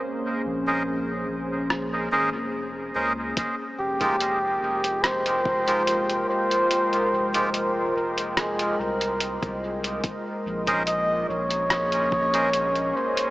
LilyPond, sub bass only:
\new Staff \with { instrumentName = "Sub bass" } { \clef bass \time 4/4 \key f \minor \tempo 4 = 72 r8 bes,,4 bes,,4 aes,,16 f,,8. des,8 | r8 f,,4 f,,2 r8 | r8 f,,4 f,,4 c,8. c,8. | r8 bes,,4 bes,,2 r8 | }